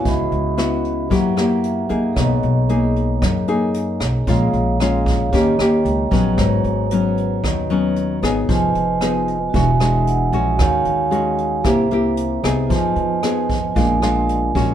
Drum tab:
HH |xxxxxxxx|xxxxxxxx|xxxxxxxx|xxxxxxxx|
SD |--r--r--|r---r--r|--r--r--|r---r--r|
BD |o---o---|o---o---|o--oo--o|o---o---|

HH |xxxxxxxx|xxxxxxxx|xxxxxxxx|
SD |--r--r--|r---r--r|--r--r--|
BD |o---o---|o---o---|o--oo--o|